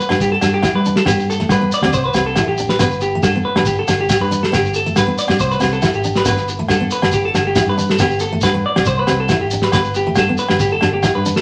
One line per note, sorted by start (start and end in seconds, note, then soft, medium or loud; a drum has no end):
0.00 0.20 B4 medium
0.09 0.39 G2 medium
0.09 0.28 D4 medium
0.09 snare medium
0.09 low agogo medium
0.20 0.32 G4 medium
0.20 kick medium
0.20 shekere medium
0.32 0.52 A4 medium
0.41 0.61 G2 medium
0.41 0.60 D4 medium
0.41 snare medium
0.41 low agogo medium
0.41 shekere medium
0.54 0.74 G4 medium
0.63 0.81 E4 medium
0.63 kick medium
0.63 snare medium
0.63 low agogo medium
0.63 shekere medium
0.75 1.04 G3 medium
0.75 0.96 B4 medium
0.85 1.04 D4 medium
0.85 shekere medium
0.96 1.07 A4 medium
0.96 snare medium
1.06 1.45 G2 medium
1.06 1.25 B3 medium
1.06 1.27 G4 medium
1.06 kick medium
1.06 snare medium
1.06 low agogo medium
1.06 shekere medium
1.20 shekere soft
1.30 1.50 A4 medium
1.30 shekere medium
1.39 1.58 A3 medium
1.39 snare soft
1.49 1.69 G3 medium
1.49 1.71 B4 medium
1.49 kick medium
1.49 snare medium
1.49 low agogo medium
1.49 shekere medium
1.62 1.79 B3 medium
1.72 1.93 D5 medium
1.72 shekere medium
1.82 1.92 D2 medium
1.82 2.02 C4 medium
1.82 snare medium
1.82 low agogo medium
1.93 2.13 C2 medium
1.93 2.04 C5 medium
1.93 kick medium
1.93 shekere medium
2.06 2.26 B4 medium
2.13 2.33 C2 medium
2.13 2.34 C4 medium
2.13 snare medium
2.13 low agogo medium
2.13 shekere medium
2.26 2.47 A4 medium
2.36 2.56 E4 medium
2.36 kick medium
2.36 snare medium
2.36 low agogo medium
2.36 shekere medium
2.47 2.76 A1 medium
2.47 2.68 G4 medium
2.57 2.77 D4 medium
2.57 shekere medium
2.69 2.79 B4 medium
2.69 snare medium
2.79 3.19 G1 medium
2.79 2.99 B3 medium
2.79 3.01 B4 medium
2.79 kick medium
2.79 snare medium
2.79 low agogo medium
2.79 shekere medium
2.91 shekere soft
3.01 3.22 G4 medium
3.01 shekere medium
3.15 3.32 A3 medium
3.23 3.43 G2 medium
3.23 3.44 A4 medium
3.23 kick medium
3.23 snare medium
3.23 low agogo medium
3.23 shekere medium
3.36 3.53 B3 medium
3.45 3.65 B4 medium
3.55 3.84 G1 medium
3.55 3.74 D4 medium
3.55 snare medium
3.55 low agogo medium
3.65 3.77 G4 medium
3.65 kick medium
3.65 shekere medium
3.79 3.99 A4 medium
3.87 4.08 G1 medium
3.87 4.06 D4 medium
3.87 snare medium
3.87 low agogo medium
3.87 shekere medium
4.01 4.21 G4 medium
4.09 kick medium
4.09 snare medium
4.09 low agogo medium
4.09 shekere medium
4.21 4.50 G2 medium
4.21 4.42 B4 medium
4.31 4.49 D4 medium
4.31 shekere medium
4.43 4.53 A4 medium
4.43 snare medium
4.52 4.92 G1 medium
4.52 4.70 B3 medium
4.52 4.74 G4 medium
4.52 kick medium
4.52 snare medium
4.52 low agogo medium
4.52 shekere loud
4.65 shekere soft
4.74 4.96 A4 medium
4.74 shekere medium
4.86 5.04 A3 medium
4.86 shekere soft
4.96 5.16 G2 medium
4.96 5.18 B4 medium
4.96 kick medium
4.96 snare medium
4.96 low agogo medium
4.96 shekere medium
5.07 5.25 B3 medium
5.18 5.39 D5 medium
5.18 shekere medium
5.28 5.39 G2 medium
5.28 5.47 C4 medium
5.28 snare medium
5.28 low agogo medium
5.28 shekere soft
5.39 5.59 C2 medium
5.39 5.51 C5 medium
5.39 kick medium
5.39 shekere medium
5.51 5.72 B4 medium
5.51 shekere soft
5.60 5.81 C2 medium
5.60 5.78 C4 medium
5.60 snare medium
5.60 low agogo medium
5.60 shekere medium
5.72 5.93 A4 medium
5.72 shekere soft
5.82 6.01 E4 medium
5.82 kick medium
5.82 snare medium
5.82 low agogo medium
5.82 shekere medium
5.93 6.23 G#1 medium
5.93 6.15 G4 medium
5.93 shekere soft
6.04 6.23 D4 medium
6.04 shekere medium
6.15 6.27 B4 medium
6.15 snare medium
6.15 shekere soft
6.25 6.65 G1 medium
6.25 6.44 B3 medium
6.25 6.48 B4 medium
6.25 kick medium
6.25 snare medium
6.25 low agogo medium
6.25 shekere medium
6.37 snare soft
6.37 shekere soft
6.48 muted clean electric guitar stroke medium
6.48 shekere medium
6.59 6.77 A3 medium
6.68 6.89 G2 medium
6.68 6.91 A4 medium
6.68 kick medium
6.68 snare medium
6.68 low agogo medium
6.68 shekere medium
6.80 6.99 B3 medium
6.90 7.13 B4 medium
6.90 shekere medium
7.02 7.31 G1 medium
7.02 7.21 D4 medium
7.02 snare medium
7.02 low agogo medium
7.12 7.24 G4 medium
7.12 kick medium
7.12 shekere medium
7.25 7.45 A4 medium
7.34 7.54 G1 medium
7.34 7.53 D4 medium
7.34 snare medium
7.34 low agogo medium
7.34 shekere medium
7.47 7.67 G4 medium
7.55 7.75 E4 medium
7.55 kick medium
7.55 snare medium
7.55 low agogo medium
7.55 shekere medium
7.67 7.96 G2 medium
7.67 7.89 B4 medium
7.78 7.96 D4 medium
7.78 shekere medium
7.90 8.00 A4 medium
7.90 snare medium
7.98 8.39 G1 medium
7.98 8.18 B3 medium
7.98 8.21 G4 medium
7.98 kick medium
7.98 snare medium
7.98 low agogo medium
7.98 shekere medium
8.11 shekere soft
8.20 8.42 A4 medium
8.20 shekere medium
8.33 8.50 A3 medium
8.41 8.63 G2 medium
8.41 8.64 B4 medium
8.41 kick medium
8.41 snare medium
8.41 low agogo medium
8.41 shekere medium
8.54 muted steel-string acoustic guitar stroke medium
8.66 8.86 D5 medium
8.76 8.86 B1 medium
8.76 8.94 C4 medium
8.76 snare medium
8.76 low agogo medium
8.85 9.06 C2 medium
8.85 8.98 C5 medium
8.85 kick medium
8.85 shekere medium
8.99 9.19 B4 medium
9.07 9.28 C2 medium
9.07 9.26 C4 medium
9.07 snare medium
9.07 low agogo medium
9.07 shekere medium
9.20 9.40 A4 medium
9.29 9.49 E4 medium
9.29 kick medium
9.29 snare medium
9.29 low agogo medium
9.29 shekere medium
9.41 9.71 G#1 medium
9.41 9.62 G4 medium
9.51 9.70 D4 medium
9.51 shekere medium
9.62 9.72 B4 medium
9.62 snare medium
9.72 10.12 G1 loud
9.72 9.92 B3 medium
9.72 9.94 B4 medium
9.72 kick medium
9.72 snare medium
9.72 low agogo medium
9.72 shekere medium
9.84 shekere soft
9.94 10.16 G4 medium
9.94 shekere medium
10.07 10.24 A3 medium
10.15 10.36 G2 medium
10.15 10.38 A4 medium
10.15 kick medium
10.15 snare medium
10.15 low agogo medium
10.15 shekere medium
10.29 10.46 B3 medium
10.37 10.59 B4 medium
10.37 shekere medium
10.49 10.79 G1 medium
10.49 10.68 D4 medium
10.49 snare medium
10.49 low agogo medium
10.59 10.71 G4 medium
10.59 kick medium
10.59 shekere medium
10.72 10.92 A4 medium
10.81 11.01 G1 medium
10.81 11.00 D4 medium
10.81 snare medium
10.81 low agogo medium
10.93 11.13 G4 medium
11.03 11.21 E4 medium
11.03 kick medium
11.03 snare medium
11.03 low agogo medium
11.03 shekere medium
11.15 11.41 G2 medium
11.15 11.35 B4 medium
11.26 11.41 D4 medium
11.26 shekere medium
11.36 11.41 A4 medium
11.36 snare medium